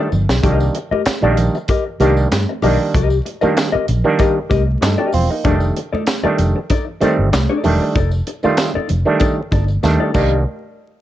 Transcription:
Already playing: clean electric guitar D5
0.00 clean electric guitar D#4 A4
0.12 fingered electric bass G1, muted clean electric guitar stroke, tambourine, low conga
0.29 fingered electric bass B1, muted clean electric guitar stroke, snare, tambourine
0.43 fingered electric bass C2, clav D#3 G3 A#3 D4, clean electric guitar G4 A#4 D#5, kick, closed hi-hat, tambourine, low conga
0.60 muted clean electric guitar stroke, tambourine
0.75 muted clean electric guitar stroke, closed hi-hat
0.91 clean electric guitar G4 A#4 D#5, muted fingered electric bass stroke, high conga
1.06 muted fingered electric bass stroke, muted clean electric guitar stroke, snare, clap, closed hi-hat, tambourine, muted conga
1.21 fingered electric bass A#1, clav D#3 G3 A#3 D4, clean electric guitar G4 A#4 D#5, high conga
1.37 muted clean electric guitar stroke, closed hi-hat, tambourine, low conga
1.55 muted clean electric guitar stroke, tambourine
1.68 clean electric guitar G4 A#4 D#5, kick, closed hi-hat, tambourine, muted conga
1.87 muted clean electric guitar stroke
2.00 fingered electric bass C2, clav D#3 G3 A#3 D4, clean electric guitar G4 A#4 D#5, closed hi-hat, tambourine, muted conga, high conga
2.17 tambourine
2.32 fingered electric bass G2, muted clean electric guitar stroke, snare, clap, closed hi-hat, tambourine, muted conga, high conga
2.49 muted clean electric guitar stroke
2.62 fingered electric bass B1, clav D#3 G3 A#3 D4, clean electric guitar G4 A#4 D#5, open hi-hat, tambourine, muted conga, low conga
2.94 fingered electric bass C2, clean electric guitar G4 A#4 D#5, kick, closed hi-hat, tambourine, muted conga, low conga
3.10 muted clean electric guitar stroke, tambourine
3.25 muted clean electric guitar stroke, closed hi-hat, muted conga
3.41 clav D#3 G3 A#3 D4, clean electric guitar G4 A#4 D#5, muted fingered electric bass stroke, tambourine, high conga
3.57 snare, clap, closed hi-hat, tambourine
3.72 clean electric guitar G4 A#4 D#5, muted fingered electric bass stroke, high conga
3.88 fingered electric bass A#1, closed hi-hat, tambourine, muted conga, low conga
4.04 clav D#3 G3 A#3 D4, muted clean electric guitar stroke
4.19 clean electric guitar G4 A#4 D#5, kick, closed hi-hat, tambourine, muted conga
4.35 muted clean electric guitar stroke
4.50 fingered electric bass C2, clean electric guitar G4 A#4 D#5, kick, closed hi-hat, tambourine, muted conga, high conga
4.67 muted clean electric guitar stroke
4.81 fingered electric bass G2, clav D#4 A4, muted clean electric guitar stroke, snare, clap, closed hi-hat, tambourine, muted conga, high conga
4.98 clav D4 G4, clean electric guitar G4 A#4 D#5
5.12 fingered electric bass E1, clav C4 F4, muted clean electric guitar stroke, open hi-hat, tambourine, muted conga, low conga
5.30 clav A#3 D#4, muted clean electric guitar stroke
5.44 fingered electric bass F1, clav D#3 G3 A3 D4, clean electric guitar D#4 A4 D5, kick, closed hi-hat, tambourine, muted conga, low conga
5.60 muted clean electric guitar stroke, tambourine
5.76 muted clean electric guitar stroke, closed hi-hat
5.93 clean electric guitar D#4 A4 D5, muted fingered electric bass stroke, high conga
6.07 muted clean electric guitar stroke, snare, clap, closed hi-hat, tambourine
6.23 clav D#3 G3 A3 D4, clean electric guitar D#4 A4 D5, muted fingered electric bass stroke, high conga
6.39 fingered electric bass F1, muted clean electric guitar stroke, closed hi-hat, tambourine, muted conga, low conga
6.56 muted clean electric guitar stroke
6.70 clean electric guitar D#4 A4 D5, kick, closed hi-hat, tambourine, muted conga
6.87 muted clean electric guitar stroke
7.01 clav D#3 G3 A3 C4, clean electric guitar D#4 A4 D5, muted fingered electric bass stroke, closed hi-hat, tambourine, high conga
7.18 fingered electric bass G1, muted clean electric guitar stroke
7.32 fingered electric bass C2, muted clean electric guitar stroke, snare, clap, closed hi-hat, tambourine, muted conga, high conga
7.49 clean electric guitar D#4 A4 D5
7.64 fingered electric bass E1, clav D#3 G3 A3 D4, open hi-hat, tambourine, muted conga, low conga
7.82 muted clean electric guitar stroke
7.95 fingered electric bass F1, clean electric guitar D#4 A4 D5, kick, closed hi-hat, tambourine
8.11 muted clean electric guitar stroke, tambourine
8.27 muted clean electric guitar stroke, closed hi-hat
8.43 clav D#3 G3 A3 F4, clean electric guitar D#4 A4 D5, muted fingered electric bass stroke, tambourine, high conga
8.57 muted clean electric guitar stroke, snare, clap, closed hi-hat, tambourine
8.74 clean electric guitar D#4 A4 D5, muted fingered electric bass stroke, high conga
8.89 fingered electric bass F1, muted clean electric guitar stroke, closed hi-hat, tambourine, muted conga, low conga
9.05 clav D#3 G3 A3 D4, muted clean electric guitar stroke
9.20 clean electric guitar D#4 A4 D5, kick, closed hi-hat, tambourine, muted conga
9.37 muted clean electric guitar stroke
9.51 fingered electric bass G1, clean electric guitar D#4 A4 D5, kick, closed hi-hat, tambourine, muted conga, high conga
9.68 muted clean electric guitar stroke, tambourine
9.83 fingered electric bass D#2, clav D#3 G3 A3 D4, muted clean electric guitar stroke, snare, tambourine, muted conga, high conga
10.00 clean electric guitar D#4 A4 D5
10.14 fingered electric bass C2, clav D#3 G3 A#3 D4, clean electric guitar G4 A#4 D#5, kick, crash, tambourine, high conga

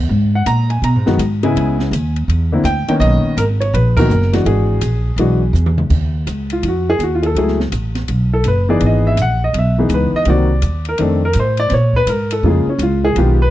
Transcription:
0.09 upright bass G#2
0.35 grand piano F#5
0.46 upright bass A#2, grand piano A#5, hi-hat pedal, ride
0.70 grand piano G#5, ride
0.82 upright bass B2, grand piano A#5, ride
0.95 upright bass G#2
1.06 upright bass F#2, grand piano D#3 G#3 B3 F#4, snare
1.18 upright bass G#2, hi-hat pedal, ride
1.43 grand piano C#3 G#3 B3 E4 G#5, ride
1.56 upright bass C#2, grand piano G#5, ride
1.79 snare
1.91 upright bass D#2, hi-hat pedal, ride
2.16 ride
2.28 upright bass E2, ride
2.52 grand piano D3 A#3 C4 E4
2.64 upright bass D2, grand piano G5, hi-hat pedal, ride
2.88 grand piano D#3 A#3 B3 C#4 G5, muted upright bass stroke, ride
3.00 upright bass B1, grand piano D#5, ride
3.23 muted upright bass stroke
3.37 upright bass G#1, grand piano A#4, hi-hat pedal, ride
3.60 grand piano C#5, ride
3.73 upright bass A#1, grand piano B4, ride
3.97 grand piano D#3 A#3 B3 F#4 A#4, kick, crash
4.10 upright bass F#1, hi-hat pedal
4.22 snare
4.32 grand piano E3 G#3 D4 F#4, snare, ride
4.45 upright bass G#1, grand piano G#4, ride
4.81 upright bass A#1, hi-hat pedal, ride
5.16 upright bass B1, grand piano E3 G#3 D4 F#4, ride
5.53 upright bass E2, hi-hat pedal
5.66 high tom
5.78 mid tom
5.90 upright bass D#2, kick, crash
6.27 upright bass C#2, hi-hat pedal, ride
6.50 grand piano F4, ride
6.63 upright bass F2, grand piano F4, ride
6.68 grand piano F#4
6.90 grand piano G#4
6.99 upright bass D#2, hi-hat pedal, ride
7.03 grand piano F#4
7.15 grand piano F4
7.23 grand piano G#4 A4, ride
7.35 upright bass C#2, grand piano F#3 A3 E4 G#4, ride
7.48 snare
7.60 snare
7.72 upright bass A1, hi-hat pedal, ride
7.95 snare, ride
8.08 upright bass B1, ride
8.33 grand piano A4
8.44 upright bass F#1, grand piano B4, hi-hat pedal, ride
8.69 grand piano E3 B3 D#4 G#4 D5
8.80 upright bass G#1, ride
8.86 grand piano D#5
9.07 grand piano E5
9.17 upright bass A#1, hi-hat pedal, ride
9.22 grand piano F#5
9.44 grand piano D#5
9.53 upright bass B1, ride
9.59 grand piano E5
9.78 grand piano E3 B3 D#4 G#4
9.89 upright bass C#2, hi-hat pedal, ride
9.94 grand piano B4
10.12 grand piano D#5, muted upright bass stroke
10.25 upright bass C2, grand piano D#3 A#3 C4 F#4, ride
10.30 grand piano D5
10.62 upright bass D#2, hi-hat pedal, ride
10.85 grand piano A#4, ride
10.98 upright bass F2, grand piano D#3 A3 C4 D4, ride
11.02 grand piano A4
11.25 grand piano A#4
11.33 upright bass A2, hi-hat pedal, ride
11.40 grand piano C5
11.57 grand piano D5, ride
11.69 upright bass A#2, grand piano C5, snare, ride
11.74 grand piano C#5
11.93 grand piano B4, kick
12.07 upright bass G#2, grand piano A#4, hi-hat pedal, ride
12.31 grand piano A4, ride
12.43 upright bass F2, grand piano C#3 G#3 A#3 F4
12.48 grand piano G#4
12.67 grand piano C#4, muted upright bass stroke
12.79 upright bass C#2, hi-hat pedal, ride
12.83 grand piano F4
13.05 grand piano G#4
13.16 upright bass B1, grand piano D#3 G#3 B3 F4 G4, ride
13.42 grand piano B4

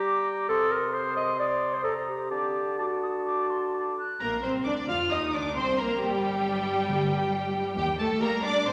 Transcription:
Already playing: bassoon G3, clarinet G4, oboe A#5, flute D6
0.49 bassoon C3, clarinet A4, oboe C6, flute D#6
0.71 clarinet A#4
0.92 clarinet C5, oboe C6, flute D#6
1.16 clarinet D#5
1.39 clarinet D5
1.74 clarinet C5
1.83 clarinet A4, oboe A#5
2.07 clarinet G4
2.30 bassoon D3, clarinet G4, oboe A5, flute D6
2.79 clarinet F#4, oboe A5, flute D6
3.03 flute D#6
3.26 flute D6
3.50 flute C6
3.74 flute D6
3.99 flute F#6
4.20 double bass section A#1, cello section A#3, viola section A#3, violin section A#4 A#5
4.43 double bass section C2, viola section C4, cello section C4, violin section C5 C6
4.65 double bass section D2, viola section D4, cello section D4, violin section D5 D6
4.88 double bass section F2, viola section F4, cello section F4, violin section F5 F6
5.11 double bass section D#2, viola section D#4, cello section D#4, violin section D#5 D#6
5.33 double bass section D2, viola section D4, cello section D4, violin section D5 D6
5.56 double bass section C2, viola section C4, cello section C4, violin section C5 C6
5.78 double bass section A#1, cello section A#3, viola section A#3, violin section A#4 A#5
6.00 double bass section G1, cello section G3, viola section G3, violin section G4 G5
6.89 timpani D3
7.77 double bass section D#2, cello section G3, violin section G4 G5
7.99 cello section A3, violin section A4 A5
8.21 viola section G3 G4, cello section A#3, violin section A#4 A#5
8.43 cello section D4, violin section D5 D6
8.67 double bass section A#1, cello section C4, violin section C5 C6

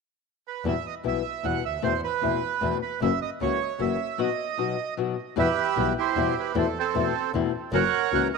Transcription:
0.48 bandoneon B4
0.64 double bass E2, nylon-string guitar B2 E3 G3 B3 E4, bandoneon E5
0.86 bandoneon D#5
1.03 double bass B1, nylon-string guitar B2 E3 G3 B3 E4
1.08 bandoneon E5
1.43 double bass E2, nylon-string guitar B2 E3 G3 B3 E4, bandoneon F#5
1.64 double bass D2, bandoneon E5
1.82 double bass E2, nylon-string guitar B2 E3 A3 C4 E4, bandoneon C5
2.04 bandoneon B4
2.21 double bass E2, nylon-string guitar B2 E3 A3 C4 E4
2.61 double bass E2, nylon-string guitar B2 E3 A3 C4 E4
2.82 bandoneon B4
3.01 double bass F#1, nylon-string guitar C#3 E3 A#3 C#4 F#4, bandoneon E5
3.22 bandoneon D#5
3.40 double bass C#2, nylon-string guitar C#3 E3 A#3 C#4 F#4, bandoneon C#5
3.78 double bass F#1, nylon-string guitar C#3 E3 A#3 C#4 F#4, bandoneon E5
4.18 nylon-string guitar B2 F#3 B3 D#4 F#4, bandoneon D#5
4.58 nylon-string guitar B2 F#3 B3 D#4 F#4
4.97 nylon-string guitar B2 F#3 B3 D#4 F#4
5.36 double bass E2, nylon-string guitar B2 E3 G3 B3 E4, bandoneon G4 B4 E5
5.76 double bass B1, nylon-string guitar B2 E3 G3 B3 E4, bandoneon E5
5.98 bandoneon E4 G4 C5
6.16 double bass E2, nylon-string guitar B2 E3 G3 B3 E4
6.40 bandoneon B4
6.55 double bass E2, nylon-string guitar B2 E3 A3 C4 E4, bandoneon A4
6.59 bandoneon C5
6.78 bandoneon C4 A4
6.94 double bass E2, nylon-string guitar B2 E3 A3 C4 E4
7.34 double bass E2, nylon-string guitar B2 E3 A3 C4 E4
7.72 double bass F#1, nylon-string guitar C#3 E3 A#3 C#4 F#4, bandoneon A#4 C#5 F#5
8.12 double bass C#2, nylon-string guitar C#3 E3 A#3 C#4 F#4, bandoneon F#5
8.34 bandoneon A#4 D#5

